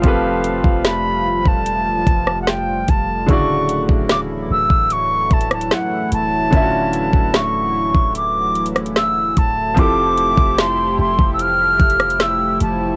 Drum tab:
HH |x---x---x-------x---x---x---x---|x---x---x-------x---xxxxx---x---|x---x---x-------x---xxxxx---x---|x---x---x-------x---xxxxx---x---|
SD |--------o-------------r-o-------|--------o-------------r-o-------|--------o-------------r-o-------|--------o-------------r-o-------|
BD |o-----o-------o-----o-------o---|o-----o-------o-----o-----------|o-----o-------o-------------o---|o-----o-------o-----o-----------|